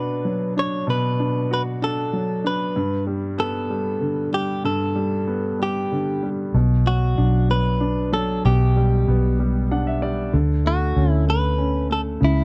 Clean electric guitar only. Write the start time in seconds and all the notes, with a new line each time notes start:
Already playing: B4
0.59 C#5
0.90 B4
1.54 B4
1.84 A4
2.47 B4
3.40 A4
4.34 G4
4.65 A4
5.63 G4
6.87 F#4
7.51 B4
8.14 A4
8.46 G4
10.67 F#4
11.11 E4
11.30 B4
11.93 A4
12.24 E4